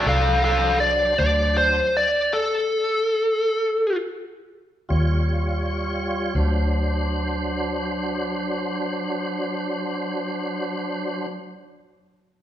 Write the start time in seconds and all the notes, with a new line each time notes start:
Already playing: F#3 D4 C5
0.06 C2 A4 F5
0.44 A4 F5
0.80 D5
1.17 D2 F#3 D4 C5 D5
1.57 C5
1.97 D5
2.33 A4
4.89 D#2 G3 F4 C#5
6.35 D2 F#3 D4 C5